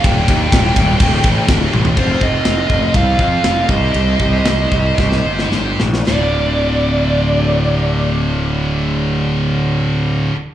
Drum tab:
CC |----------------|x---------------|----------------|x---------------|
RD |x-x-x-x-x-x-x---|----b---b---b---|b---b-----------|----------------|
SD |----o-------o---|----o-------o---|----o---oo-oo-oo|o---------------|
T1 |--------------o-|----------------|----------------|----------------|
FT |---------------o|----------------|----------------|----------------|
BD |o-o-o-o-o-o-o---|o-o---o-o-o---o-|--o---o-o-------|----------------|

CC |----------------|
RD |----------------|
SD |----------------|
T1 |----------------|
FT |----------------|
BD |----------------|